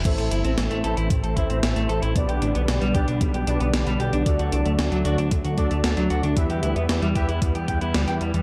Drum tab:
CC |x---------------|----------------|----------------|----------------|
HH |xxxxxxxxxxxxxxxx|xxxxxxxxxxxxxxxx|xxxxxxxxxxxxxxxx|xxxxxxxxxxxxxxxx|
SD |----o-------o---|----o-------o---|----o-------o---|----o-------o---|
BD |o-------o-o-----|o-----o-o-------|o-------o-o-----|o-----o-o-o-----|